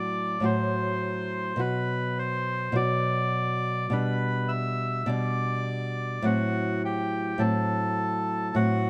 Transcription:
Already playing: A2 F#3 F#4 D5
0.40 A2 F#3 F#4
0.45 C5
1.56 B2 F#3 F#4 B4
2.19 C5
2.72 B2 F#3 F#4
2.76 D5
3.90 B2 G3 D4 B4
4.48 E5
5.06 B2 G3 D4 D5
6.22 A2 F#3 C4 F#4
6.85 G4
7.38 A2 F#3 C4 A4
8.55 A2 F#3 C4 F#4

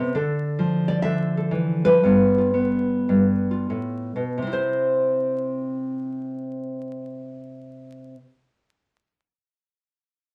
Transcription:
Already playing: B3 F4 A4
0.00 C3
0.15 D3 A4
0.59 F3
0.88 D5
1.02 D3 E5
1.37 A4
1.51 E3
1.85 F3 B4
2.03 G2 B3 F4
2.38 F4
2.54 B3
3.09 G2
3.51 F4
3.70 A2
4.16 B2
4.38 C3
4.42 C4
4.47 E4
4.53 C5

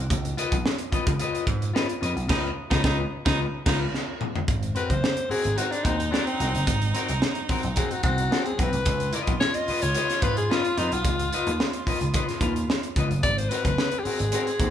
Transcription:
0.10 C#2, kick, closed hi-hat
0.25 closed hi-hat
0.37 F4 B4 D#5, closed hi-hat
0.52 B1, kick, closed hi-hat
0.66 muted clean electric guitar stroke, snare
0.78 muted clean electric guitar stroke, closed hi-hat
0.92 F4 B4 D#5, muted slap bass stroke, kick, closed hi-hat
1.07 C#2, muted clean electric guitar stroke, kick, closed hi-hat
1.20 F4 B4 D#5, closed hi-hat
1.35 closed hi-hat
1.47 G#2, kick, closed hi-hat
1.61 muted clean electric guitar stroke, closed hi-hat
1.74 F4 B4 D#5, snare
1.88 muted clean electric guitar stroke, closed hi-hat
2.01 F2 F4 B4 D#5, closed hi-hat
2.16 B1, muted clean electric guitar stroke, closed hi-hat
2.29 C#2 D#4 F4 B4 D#5, kick, snare, crash
2.70 C#2 D#4 F4 B4 D#5, kick, snare
2.83 C#2 D#4 F4 B4 D#5, kick, snare
3.25 C#2 D#4 F4 B4 D#5, kick, snare
3.66 C#2 D#4 F4 B4 F5, kick, snare, crash
3.94 snare
4.21 mid tom
4.35 floor tom
4.48 G#1, kick, closed hi-hat
4.63 closed hi-hat
4.75 C4 F#4 A#4 B4, closed hi-hat
4.90 F#1 C5, kick, closed hi-hat
5.03 muted clean electric guitar stroke, snare
5.17 muted clean electric guitar stroke, closed hi-hat
5.29 C4 F#4 G#4 A#4, muted slap bass stroke, open hi-hat
5.44 G#1, muted clean electric guitar stroke, closed hi-hat
5.56 C4 D#4 F#4 A#4, closed hi-hat
5.71 D4, muted clean electric guitar stroke, closed hi-hat
5.84 D#2 C4 D#4 F#4 C5, kick, closed hi-hat
5.99 muted clean electric guitar stroke, closed hi-hat
6.11 C4 D4 F#4 A#4, snare
6.26 C4, muted clean electric guitar stroke, closed hi-hat
6.39 C2 C4 F#4 A#4, closed hi-hat
6.55 F#1, muted clean electric guitar stroke, closed hi-hat
6.67 G#1, kick, closed hi-hat
6.82 closed hi-hat
6.94 C4 F#4 A#4, closed hi-hat
7.08 C2, closed hi-hat
7.22 muted clean electric guitar stroke, snare
7.35 muted clean electric guitar stroke, closed hi-hat
7.49 C4 F#4 A#4, muted slap bass stroke, kick, open hi-hat
7.63 B1, muted clean electric guitar stroke, closed hi-hat
7.76 C4 F#4 G#4 A#4, kick, closed hi-hat
7.91 F#4, muted clean electric guitar stroke, closed hi-hat
8.03 C2 C4 F#4 C5, kick, closed hi-hat
8.18 muted clean electric guitar stroke, closed hi-hat
8.31 C4 F#4 A#4, snare
8.45 G#4, muted clean electric guitar stroke, closed hi-hat
8.58 B1 C4 F#4 A#4 B4, kick, closed hi-hat
8.73 C2, muted clean electric guitar stroke, closed hi-hat
8.85 C#2 F4, kick, closed hi-hat
9.00 closed hi-hat
9.13 F4 B4 D#5, closed hi-hat
9.27 B1, kick, closed hi-hat
9.40 C#5, muted clean electric guitar stroke, snare
9.54 D#5, muted clean electric guitar stroke, closed hi-hat
9.68 F4 B4 D#5, muted slap bass stroke, open hi-hat
9.82 C#2 C#5, muted clean electric guitar stroke, closed hi-hat
9.95 F4 B4 D#5, closed hi-hat
10.10 muted clean electric guitar stroke, snare, closed hi-hat
10.22 G#2 F4 B4 F5, kick, closed hi-hat
10.37 G#4, muted clean electric guitar stroke, closed hi-hat
10.50 F4 B4 D#5, snare
10.65 muted clean electric guitar stroke, closed hi-hat
10.77 F2 D#4 F4 B4 D#5, closed hi-hat
10.92 B1 F4, muted clean electric guitar stroke, closed hi-hat
11.04 C#2, kick, closed hi-hat
11.19 closed hi-hat
11.33 F4 B4 D#5, closed hi-hat
11.47 D#2, closed hi-hat
11.60 muted clean electric guitar stroke, snare
11.73 muted clean electric guitar stroke, closed hi-hat
11.87 F4 B4 D#5, muted slap bass stroke, kick, open hi-hat
12.01 C#2, muted clean electric guitar stroke, closed hi-hat
12.14 F4 B4 D#5, kick, closed hi-hat
12.29 muted clean electric guitar stroke, snare, closed hi-hat
12.41 D#2 F4 B4 F5, kick, closed hi-hat
12.56 muted clean electric guitar stroke, closed hi-hat
12.69 muted clean electric guitar stroke, snare
12.83 closed hi-hat
12.96 C#2 F4 B4 D#5, kick, closed hi-hat
13.10 F#1, muted clean electric guitar stroke, closed hi-hat
13.23 G#1 D5, kick, closed hi-hat
13.38 C5, closed hi-hat
13.49 C4 F#4 A#4 B4, closed hi-hat
13.65 F#1, kick, closed hi-hat
13.78 muted clean electric guitar stroke, snare
13.92 muted clean electric guitar stroke, closed hi-hat
13.99 G4
14.03 C4 F#4 G#4, muted slap bass stroke, open hi-hat
14.07 A#4
14.19 G#1, muted clean electric guitar stroke, closed hi-hat
14.32 C4 F#4 G#4 A#4, closed hi-hat
14.47 muted clean electric guitar stroke, closed hi-hat
14.60 D#2 C4 F#4 C5, kick, closed hi-hat

